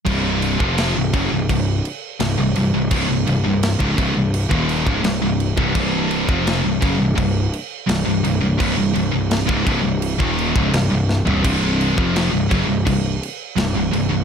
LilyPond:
<<
  \new Staff \with { instrumentName = "Distorted electric guitar" } { \clef bass \time 4/4 \key c \minor \tempo 4 = 84 <c, g, c>8. <f, c f>8 <c, g,>16 <fis, des>16 <c, g,>16 <c, g,>8 r8 <c, g,>16 <c, g,>16 <c, g,>16 <c, g,>16 | <c, g,>16 <c, g,>16 <c, g,>16 <c, g,>8 <des, aes,>16 <c, g,>16 <c, g,>8 <ees, bes, ees>8 <des, aes,>16 <c, g,>16 <c, g,>8 <c, g,>16 | <c, g, c>8. <f, c f>8 <c, g,>16 <fis, des>16 <c, g,>16 <c, g,>8 r8 <c, g,>16 <c, g,>16 <c, g,>16 <c, g,>16 | <c, g,>16 <c, g,>16 <c, g,>16 <c, g,>8 <des, aes,>16 <c, g,>16 <c, g,>8 <ees, bes, ees>8 <des, aes,>16 <c, g,>16 <c, g,>8 <c, g,>16 |
<c, g, c>8. <f, c f>8 <c, g,>16 <fis, des>16 <c, g,>16 <c, g,>8 r8 <c, g,>16 <c, g,>16 <c, g,>16 <c, g,>16 | }
  \new Staff \with { instrumentName = "Picked electric bass" } { \clef bass \time 4/4 \key c \minor c,,8. f,,8 c,,16 fis,,16 c,,16 c,,8 r8 c,,16 c,,16 c,,16 c,,16 | c,,16 c,,16 c,,16 c,,8 des,,16 c,,16 c,,8 ees,,8 des,,16 c,,16 c,,8 c,,16 | c,,8. f,,8 c,,16 fis,,16 c,,16 c,,8 r8 c,,16 c,,16 c,,16 c,,16 | c,,16 c,,16 c,,16 c,,8 des,,16 c,,16 c,,8 ees,,8 des,,16 c,,16 c,,8 c,,16 |
c,,8. f,,8 c,,16 fis,,16 c,,16 c,,8 r8 c,,16 c,,16 c,,16 c,,16 | }
  \new DrumStaff \with { instrumentName = "Drums" } \drummode { \time 4/4 <cymc bd>8 cymc16 bd16 <cymc sn>8 <cymc bd>8 <cymc bd>8 cymc8 <cymc sn>8 cymc8 | <cymc bd>8 cymc8 <cymc sn>16 bd16 <cymc bd>8 cymc16 bd16 cymc16 bd16 <cymc sn>8 cymc16 bd16 | <cymc bd>8 cymc16 bd16 <cymc sn>8 <cymc bd>8 <cymc bd>8 cymc8 <cymc sn>8 cymc8 | <cymc bd>8 cymc8 <cymc sn>16 bd16 <cymc bd>8 cymc16 bd16 cymc16 bd16 <cymc sn>8 sn16 tomfh16 |
<cymc bd>8 cymc16 bd16 <cymc sn>8 <cymc bd>8 <cymc bd>8 cymc8 <cymc sn>8 cymc8 | }
>>